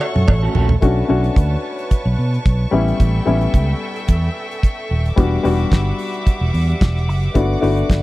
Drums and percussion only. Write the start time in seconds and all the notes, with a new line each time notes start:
0.01 cowbell
0.16 mid tom
0.28 kick, mid tom, cowbell
0.55 floor tom
0.69 floor tom
0.82 kick, closed hi-hat
1.24 closed hi-hat
1.36 kick, closed hi-hat
1.79 closed hi-hat
1.91 kick, closed hi-hat
2.34 closed hi-hat
2.46 kick, closed hi-hat
2.88 closed hi-hat
3.00 kick, closed hi-hat
3.41 closed hi-hat
3.54 kick, closed hi-hat
3.96 closed hi-hat
4.08 kick, closed hi-hat
4.51 closed hi-hat
4.63 kick, closed hi-hat
5.06 closed hi-hat
5.18 kick, closed hi-hat
5.45 open hi-hat
5.59 closed hi-hat
5.72 kick, snare, closed hi-hat
5.99 open hi-hat
6.14 closed hi-hat
6.27 kick, closed hi-hat
6.54 open hi-hat
6.70 closed hi-hat
6.81 kick, snare, closed hi-hat
6.96 snare
7.10 open hi-hat
7.23 closed hi-hat
7.35 kick, closed hi-hat
7.63 open hi-hat
7.77 closed hi-hat
7.90 kick, snare, closed hi-hat